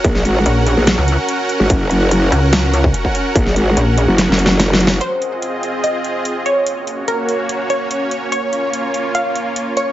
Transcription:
<<
  \new Staff \with { instrumentName = "Synth pluck" } { \time 4/4 \key ges \lydian \tempo 4 = 145 r1 | r1 | r1 | c''2 ees''4. des''8~ |
des''4 bes'4. des''4. | des''2 f''4. des''8 | }
  \new Staff \with { instrumentName = "Supersaw synth" } { \time 4/4 \key ges \lydian << { <ges' ges''>1~ | <ges' ges''>1~ | <ges' ges''>1 | <f' ees''>1 |
<des' des''>1~ | <des' des''>1 | } \\ { <des' bes'>1~ | <des' bes'>1~ | <des' bes'>1 | <c' aes'>1 |
<bes ges'>1 | <bes f'>1 | } >> }
  \new Staff \with { instrumentName = "Wobble bass" } { \clef bass \time 4/4 \key ges \lydian r4 bes,,8. r8 des,8 r4 r16 | r4. des,4. r4 | r4 bes,,8. r2 r16 | r1 |
r1 | r1 | }
  \new Staff \with { instrumentName = "Wobble bass" } { \clef bass \time 4/4 \key ges \lydian bes,,8 aes,,8 r8. bes,,8 r4. aes,,16 | ges,,4. r2 r8 | bes,,8 aes,,8 r8. ges,,8 ges,,4.~ ges,,16 | r1 |
r1 | r1 | }
  \new DrumStaff \with { instrumentName = "Drums" } \drummode { \time 4/4 <hh bd>16 sn16 hh8 hh8 hh8 <hh sn>8 hh8 hh8 hh8 | <hh bd>8 hh8 hh8 hh8 <hh sn>8 hh16 bd16 hh16 bd16 hh8 | <hh bd>16 sn16 hh8 hh8 hh8 \tuplet 3/2 { <hh sn>16 r16 sn16 hh16 sn16 r16 <hh sn>16 r16 sn16 hh16 sn16 r16 } | hh8 hh8 hh8 hh8 hh8 hh8 hh8 hh8 |
hh8 hh8 hh8 hh8 hh8 hh8 hh8 hh8 | hh8 hh8 hh8 hh8 hh8 hh8 hh8 hh8 | }
>>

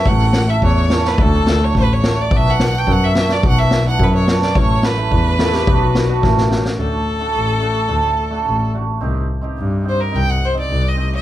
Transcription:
<<
  \new Staff \with { instrumentName = "Violin" } { \time 2/4 \tempo 4 = 107 fis''8. e''16 cis''8. b'16 | a'8. cis''16 b'16 cis''8 d''16 | e''16 fis''8 g''16 fis''16 e''8 d''16 | fis''16 e''8 fis''16 b'16 cis''8 d''16 |
cis''8 b'4.~ | b'4 r4 | a'2~ | a'4. r8 |
r4. c''16 bes'16 | g''16 fis''16 c''16 d''8 ees''8 fis''16 | }
  \new Staff \with { instrumentName = "Clarinet" } { \time 2/4 r2 | r2 | r2 | r2 |
r4. a'16 g'16~ | g'16 fis'4.~ fis'16 | r2 | r2 |
r2 | r2 | }
  \new Staff \with { instrumentName = "Hammered dulcimer" } { \time 2/4 <a cis' e'>8 r16 <a cis' e'>16 r8 <a cis' e'>16 r16 | <a d' fis'>8 r16 <a d' fis'>16 r8 <a d' fis'>16 r16 | <b d' fis'>8 r16 <b d' fis'>16 r8 <b d' fis'>16 r16 | <b d' fis'>8 r16 <b d' e'>16 r8 <b d' fis'>16 r16 |
<a cis' e'>8 r16 <a cis' e'>16 r8 <a cis' e'>16 r16 | <b d' fis'>8 r16 <b d' fis'>16 <a cis' e'>8 <a cis' g'>16 r16 | <a d' fis'>8 r16 <a d' fis'>16 r8 <a d' fis'>16 r16 | <a d' a'>8 r16 <a d' fis'>16 r8 <a d' fis'>16 r16 |
<c' ees' g'>8 r16 <c' ees' g'>16 r8 <c' ees' g'>16 r16 | <c' ees' g'>8 r16 <c' ees' g'>16 r8 <c' ees' g'>16 r16 | }
  \new Staff \with { instrumentName = "Double bass" } { \clef bass \time 2/4 a,,4 e,8 r8 | d,4 a,,8 r8 | b,,4 fis,8 r8 | b,,4 fis,8 r8 |
a,,4 e,8 r8 | b,,4 a,,8 r8 | d,8 r8 a,,4 | d,8 r8 a,,4 |
c,8 r8 g,4 | c,8 r8 c,4 | }
  \new DrumStaff \with { instrumentName = "Drums" } \drummode { \time 2/4 bd16 sn16 sn8 bd8 sn16 sn16 | bd8 sn8 <bd sn>8 sn8 | bd16 sn16 sn8 bd8 sn16 sn16 | bd16 sn16 sn8 bd8 sn16 sn16 |
bd8 sn8 bd8 sn16 sn16 | bd8 sn8 <bd sn>16 sn16 sn16 sn16 | r4 r4 | r4 r4 |
r4 r4 | r4 r4 | }
>>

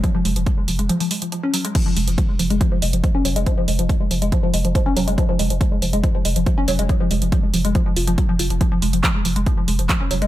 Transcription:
<<
  \new Staff \with { instrumentName = "Synth arpeggio sound" } { \clef bass \time 4/4 \key f \phrygian \tempo 4 = 140 f16 f16 aes16 f16 f16 aes16 f16 aes16 f16 f16 aes16 f16 f16 des'16 ges16 aes16 | f16 f16 aes16 f16 f16 aes16 f16 aes16 f16 f16 aes16 f16 f16 des'16 ges16 aes16 | f16 f16 aes16 f16 f16 aes16 f16 aes16 f16 f16 aes16 f16 f16 des'16 ges16 aes16 | f16 f16 aes16 f16 f16 aes16 f16 aes16 f16 f16 aes16 f16 f16 des'16 ges16 aes16 |
f16 f16 aes16 f16 f16 aes16 f16 aes16 f16 f16 f'16 f16 ges16 f16 f'16 f16 | f16 f16 aes16 f16 f16 aes16 f16 aes16 f16 f16 aes16 f16 f16 des'16 ges16 aes16 | }
  \new Staff \with { instrumentName = "Sub bass" } { \clef bass \time 4/4 \key f \phrygian r8 f,,16 f,,16 r8 f,,16 f,,16 r2 | r8 f,,16 f,,16 r8 f,,16 f,,16 r8 f,,16 f,,16 r8 f,,16 f,,16 | r8 f,,16 f,,16 r8 f,,16 f,,16 r8 f,,16 f,,16 r8 f,,16 f,,16 | r8 f,,16 f,,16 r8 f,,16 f,,16 r8 f,,16 f,,16 r8 f,,16 f,,16 |
r8 f,,16 f,,16 r8 f,,16 f,,16 r8 f,,16 f,,16 r8 f,,16 f,,16 | r8 f,,16 f,,16 r8 f,,16 f,,16 r8 f,,16 f,,16 r8 f,,16 f,,16 | }
  \new DrumStaff \with { instrumentName = "Drums" } \drummode { \time 4/4 <hh bd>8 hho16 hh16 <hh bd>8 hho16 hh16 hh16 hho16 hho16 hh16 hh8 hho16 hh16 | <cymc hh bd>8 hho16 hh16 <hh bd>8 hho16 hh16 <hh bd>8 hho16 hh16 <hh bd>8 hho16 hh16 | <hh bd>8 hho16 hh16 <hh bd>8 hho16 hh16 <hh bd>8 hho16 hh16 <hh bd>8 hho16 hh16 | <hh bd>8 hho16 hh16 <hh bd>8 hho16 hh16 <hh bd>8 hho16 hh16 <hh bd>8 hho16 hh16 |
<hh bd>8 hho16 hh16 <hh bd>8 hho16 hh16 <hh bd>8 hho16 hh16 <hh bd>8 hho16 hh16 | <hh bd>8 hho16 hh16 <hc hh bd>8 hho16 hh16 <hh bd>8 hho16 hh16 <hc hh bd>8 hho16 hh16 | }
>>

